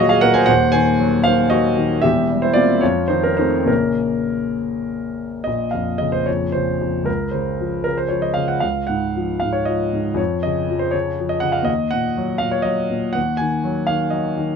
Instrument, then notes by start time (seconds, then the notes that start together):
grand piano
Already playing: D#1 D#2 A#2 F#4 G#4 D#5 F5
0.00 F#3
0.09 G#4 F5
0.21 A#2 A#4 F#5
0.34 C5 G#5
0.46 D#1 D#2 C5 F#5
0.72 D#3 C5 G#5
1.00 F#3
1.24 D#3 C5 F5
1.50 F#3 F#4 D#5
1.77 D#3
2.02 E1 E2 G4 E5
2.30 G3
2.42 E4 C5
2.54 A#3 C4 F4 D5
2.81 F2 F4 C#5
3.08 D#3 D#4 C5
3.23 C#4 A#4
3.37 A3 C4 D#4 C5
3.65 A#1 C#3 A#3 C#4 A#4
5.44 A#1 D#5
5.71 F2 F5
5.98 C#3 D#5
6.12 C5
6.26 F2 C#5
6.52 C#3 C5
6.81 F2
7.04 C#2 A#4
7.31 C#3 C5
7.61 F3
7.84 C#3 A#4
7.97 C5
8.09 F3 C#5
8.22 D#5
8.34 C#3 F5
8.48 F#5
8.60 C#2 F5
8.87 G#2 F#5
9.16 F3
9.40 G#2 F5
9.53 C#5
9.65 F3 D#5
9.93 G#2
10.14 F2 C#5
10.43 C#3 D#5
10.70 F3
10.79 C5
10.91 C#3 C#5
11.19 F3
11.29 D#5
11.40 C#3 F#5
11.52 F5
11.63 D#2 D#5
11.91 A#2 F#5
12.17 F#3
12.38 A#2 F5
12.51 C#5
12.62 F#3 D#5
12.90 A#2
13.13 D#2 F#5
13.37 D#3 G#5
13.64 F#3
13.87 D#3 F5
14.10 F#3 D#5
14.38 D#3